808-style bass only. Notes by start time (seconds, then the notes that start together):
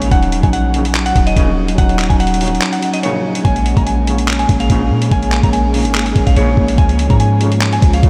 Already playing: A#1
0.11 D#1
0.43 A#1
1.16 D#1
1.37 D#1
1.78 D#1
2.10 D#1
3.45 A#1
3.77 A#1
4.49 A#1
4.70 A#1
4.91 A#2
5.12 A#1
5.43 A#1
5.85 G#1
6.16 A#1
6.36 A#1
6.57 A#1
6.78 C#2
7.10 G#2
7.82 C#2
8.03 C#2